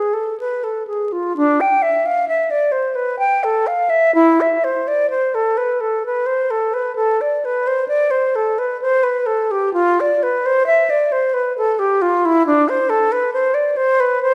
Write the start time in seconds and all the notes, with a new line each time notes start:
Already playing: G#4
0.13 A4
0.40 B4
0.64 A4
0.87 G#4
1.12 F4
1.36 D4
1.60 G5
1.82 E5
2.06 F5
2.28 E5
2.50 D5
2.72 C5
2.95 B4
3.19 G5
3.44 A4
3.67 F5
3.90 E5
4.15 E4
4.41 E5
4.64 C5
4.88 D5
5.10 C5
5.34 A4
5.57 B4
5.80 A4
6.06 B4
6.26 C5
6.50 A4
6.74 B4
6.95 A4
7.21 D5
7.45 B4
7.67 C5
7.88 D5
8.11 C5
8.35 A4
8.58 B4
8.82 C5
9.03 B4
9.26 A4
9.51 G4
9.73 F4
10.00 D5
10.23 B4
10.46 C5
10.66 E5
10.90 D5
11.12 C5
11.34 B4
11.58 A4
11.79 G4
12.02 F4
12.25 E4
12.46 D4
12.69 C5
12.89 A4
13.12 B4
13.33 C5
13.54 D5
13.76 C5
14.00 B4
14.23 C5